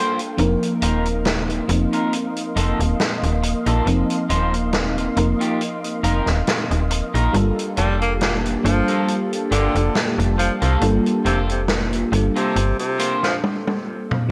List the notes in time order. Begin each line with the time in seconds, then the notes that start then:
Already playing: G3 A#3 D4 F4 A4 C5 F5 G5
0.19 closed hi-hat
0.37 F1 F3 A#3 C4 D#4 A#4 D#5 F5 C6, closed hi-hat
0.63 closed hi-hat
0.82 D#1 D#4 F4 A#4, closed hi-hat
1.05 closed hi-hat
1.25 snare, closed hi-hat
1.50 closed hi-hat
1.67 F1 F3 A#3 C4 D#4, muted clean electric guitar stroke, closed hi-hat
1.93 D#4 F4 A#4, closed hi-hat
2.13 closed hi-hat
2.36 closed hi-hat
2.56 F1 D#4 F4 A4, closed hi-hat
2.79 D#1, closed hi-hat
3.00 snare, closed hi-hat
3.23 D#1, closed hi-hat
3.43 muted clean electric guitar stroke, closed hi-hat
3.66 A#1 D#4 F4 A4, closed hi-hat
3.85 F1 F3 A#3 C4 D#4, closed hi-hat
4.10 closed hi-hat
4.29 D#1 D#4 F4 C5, closed hi-hat
4.54 closed hi-hat
4.73 snare, closed hi-hat
4.98 closed hi-hat
5.16 F1 F3 A#3 C4 D#4 A#4, muted clean electric guitar stroke, closed hi-hat
5.40 D#4 F4 G4, closed hi-hat
5.61 closed hi-hat
5.84 closed hi-hat
6.03 F1 D#4 F4 A#4, closed hi-hat
6.26 D#1, snare, closed hi-hat
6.47 snare, closed hi-hat
6.71 D#1, closed hi-hat
6.91 muted clean electric guitar stroke, closed hi-hat
7.14 A#1 D#4 F4 A#4, closed hi-hat
7.32 G1 G3 A#3 D4 F4 G4 A4 A5, closed hi-hat
7.59 closed hi-hat
7.77 F1 G3 A#3 F4 A4, closed hi-hat
8.01 A#3, closed hi-hat
8.21 A#3, snare, closed hi-hat
8.46 closed hi-hat
8.63 G1 F3 G3 A#3 D4 F4 A4, muted clean electric guitar stroke, closed hi-hat
8.88 A#3 F4 A4, closed hi-hat
9.08 closed hi-hat
9.33 closed hi-hat
9.51 G1 D3 A#3 F4 G4, closed hi-hat
9.75 F1, closed hi-hat
9.95 snare, closed hi-hat
10.18 F1, closed hi-hat
10.38 F3, muted clean electric guitar stroke, closed hi-hat
10.62 C2 F3 A#3 F4 A4, closed hi-hat
10.81 G1 G3 A#3 D4 F4 A4, closed hi-hat
11.06 closed hi-hat
11.25 F1 C3 A#3 F4 A4, closed hi-hat
11.49 C3, closed hi-hat
11.68 snare, closed hi-hat
11.93 closed hi-hat
12.12 G1 G3 A#3 D4 F4 A4, muted clean electric guitar stroke, closed hi-hat
12.36 C3 A#3 F4 A4, closed hi-hat
12.56 G1, closed hi-hat
12.79 C3, closed hi-hat
12.99 A#3 F4 C5, closed hi-hat
13.23 F3, snare, closed hi-hat
13.44 high tom
13.67 high tom
14.11 mid tom